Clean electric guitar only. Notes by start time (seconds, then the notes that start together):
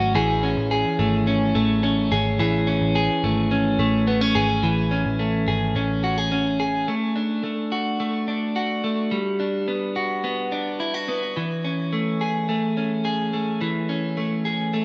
Already playing: F#3 A3 C#4 F#4
0.15 E3 G#4
0.43 C#4
0.71 G#4
0.99 A3
1.27 C#4
1.55 A3
1.83 C#4
2.12 G#4
2.39 E3 G#4
2.67 C#4
2.95 G#4
3.24 A3
3.51 C#4
3.79 A3
4.07 B3
4.21 C#4
4.35 G#4
4.63 E3
4.91 C#4
5.19 A3
5.48 G#4
5.76 C#4
6.04 F#4
6.18 G#4
6.32 C#4
6.60 G#4
6.88 A3
7.16 D4
7.44 A3
7.72 F#4
8.00 A3
8.28 D4
8.56 F#4
8.84 A3
9.11 G3
9.40 D4
9.68 B3
9.96 F#4
10.24 B3
10.52 D4
10.80 E4
10.94 F#4
11.08 B3
11.37 E3
11.64 C#4
11.93 A3
12.21 G#4
12.49 A3
12.77 C#4
13.05 G#4
13.33 A3
13.61 E3
13.89 C#4
14.17 A3
14.45 G#4
14.73 A3